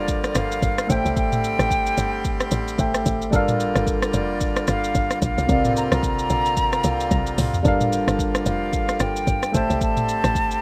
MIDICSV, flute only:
0, 0, Header, 1, 2, 480
1, 0, Start_track
1, 0, Tempo, 540541
1, 1035, Time_signature, 4, 2, 24, 8
1, 9427, End_track
2, 0, Start_track
2, 0, Title_t, "Flute"
2, 0, Program_c, 0, 73
2, 0, Note_on_c, 0, 74, 103
2, 324, Note_on_c, 0, 77, 113
2, 337, Note_off_c, 0, 74, 0
2, 803, Note_on_c, 0, 79, 108
2, 816, Note_off_c, 0, 77, 0
2, 1039, Note_off_c, 0, 79, 0
2, 1045, Note_on_c, 0, 79, 125
2, 2445, Note_off_c, 0, 79, 0
2, 3686, Note_on_c, 0, 74, 94
2, 4127, Note_off_c, 0, 74, 0
2, 4168, Note_on_c, 0, 77, 107
2, 4609, Note_off_c, 0, 77, 0
2, 4649, Note_on_c, 0, 77, 109
2, 5089, Note_off_c, 0, 77, 0
2, 5128, Note_on_c, 0, 82, 104
2, 5181, Note_off_c, 0, 82, 0
2, 5265, Note_on_c, 0, 82, 114
2, 6525, Note_off_c, 0, 82, 0
2, 7523, Note_on_c, 0, 77, 102
2, 8000, Note_on_c, 0, 79, 113
2, 8014, Note_off_c, 0, 77, 0
2, 8484, Note_on_c, 0, 81, 109
2, 8497, Note_off_c, 0, 79, 0
2, 8720, Note_off_c, 0, 81, 0
2, 8726, Note_on_c, 0, 81, 120
2, 9427, Note_off_c, 0, 81, 0
2, 9427, End_track
0, 0, End_of_file